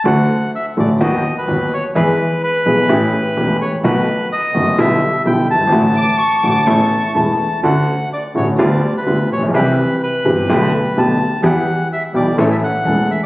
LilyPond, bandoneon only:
\new Staff \with { instrumentName = "Bandoneon" } { \time 4/4 \key d \major \tempo 4 = 127 fis''4 e''8 d''8 dis''8. b'8. cis''8 | b'4 b'2~ b'8 cis''8 | b'4 dis''4 e''4 g''8 a''8~ | a''2. a''4 |
fis''4 d''8 cis''8 d''8. b'8. cis''8 | b'4 b'2 a''4 | fis''4 e''8 d''8 cis''16 e''16 fis''4 e''16 r16 | }